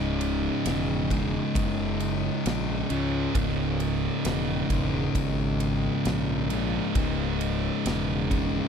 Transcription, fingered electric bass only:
Already playing: C#1
0.65 E1
1.55 F#1
2.45 A#1
2.90 C#2
3.35 C#1
4.25 E1
4.70 E1
5.15 G#1
6.05 A#1
6.95 C#1
7.85 E1

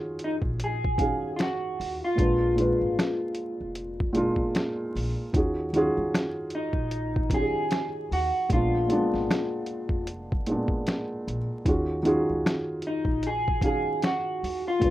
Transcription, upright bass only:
0.42 A#1
1.80 D#2
2.19 A#1
2.81 G#1
3.60 F1
4.95 A#1
5.34 D#2
5.97 C#2
6.74 A#1
8.11 D#2
8.50 A#1
9.14 G#1
9.90 F1
11.27 A#1
11.66 D#2
12.29 C#2
13.05 A#1
14.43 D#2
14.82 A#1

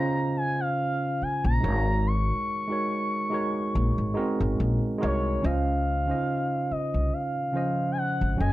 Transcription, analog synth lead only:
Already playing: A#5
0.37 G#5
0.60 F5
1.23 G#5
1.45 A#5
2.07 C#6
5.02 C#5
5.44 F5
6.71 D#5
7.13 F5
7.92 G#5
7.98 F#5
8.40 G#5

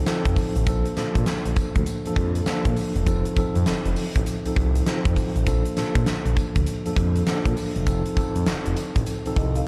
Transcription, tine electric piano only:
Already playing: F3 C4 D#4 A4
0.07 F3 C4 D#4 A4
0.67 F3 A#3 D4 A4
0.97 F3 A#3 D4 A4
2.06 F3 A#3 D4 A4
2.47 F3 A#3 D4 A4
3.07 F3 C4 D#4 A4
3.37 F3 C4 D#4 A4
4.46 F3 C4 D#4 A4
4.87 F3 C4 D#4 A4
5.47 F3 A#3 D4 A4
5.77 F3 A#3 D4 A4
6.86 F3 A#3 D4 A4
7.27 F3 A#3 D4 A4
7.87 F3 C4 D#4 A4
8.17 F3 C4 D#4 A4
9.26 F3 C4 D#4 A4
9.38 D#5
9.57 F5

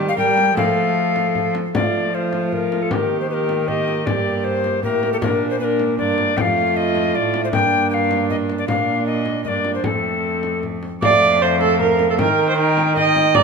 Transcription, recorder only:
0.08 F5
0.18 G5
0.57 F5
1.75 D5
2.15 C5
2.53 A#4
2.82 A4
2.92 A#4 B4
3.20 C5
3.30 B4
3.34 A#4
3.68 D#5
4.06 D5
4.44 C5
4.84 A#4
5.13 A4
5.21 A#4
5.50 C5
5.59 B4
5.64 A#4
5.98 D5
6.37 F5 G5
6.77 D#5
7.15 D5
7.44 C5
7.53 G5
7.90 F5 G5
8.30 D#5
8.58 D5
8.68 F5
9.06 D#5
9.44 D5 D#5
9.75 C5
9.84 A4
11.03 F5
11.42 F5
12.19 G5
12.58 G5
12.96 G5
13.35 A#5

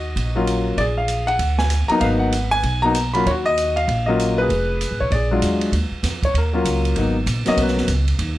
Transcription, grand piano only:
Already playing: F#4 D#5
0.36 F#3 A#3 C#4 F4
0.78 G#4 D5
0.98 F5
1.27 F#5
1.59 G#5
1.88 F#3 A#3 B3 D#4 A#5
2.00 B4 F5
2.19 F#5
2.51 G#5
2.82 F#3 A#3 B3 D#4 A#5
3.14 F#3 A#3 C#4 F4 B5
3.27 F#4 C#5
3.46 D#5
3.76 F5
4.06 F#3 A#3 C#4 F4 D#5
4.38 G#4 B4
5.00 C#5
5.12 G#4 D5
5.31 F#3 G#3 D4 F4
6.25 C#5
6.37 A#4
6.53 F#3 A#3 C#4 F4
6.97 F#3 A#3 B3 D#4
7.46 F#3 A#3 B3 C#4 D#5
7.62 B4

